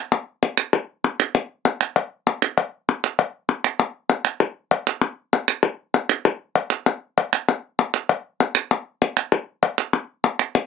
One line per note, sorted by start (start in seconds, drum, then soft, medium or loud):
0.12 clap medium
0.57 clap medium
1.20 clap medium
1.81 clap medium
1.96 clap soft
2.42 clap medium
2.58 clap medium
3.04 clap medium
3.19 clap soft
3.64 clap medium
3.80 clap medium
4.25 clap medium
4.87 clap medium
5.48 clap medium
6.09 clap loud
6.70 clap medium
7.33 clap medium
7.49 clap medium
7.94 clap medium
8.55 clap medium
8.71 clap soft
9.17 clap medium
9.78 clap medium
9.93 clap medium
10.39 clap medium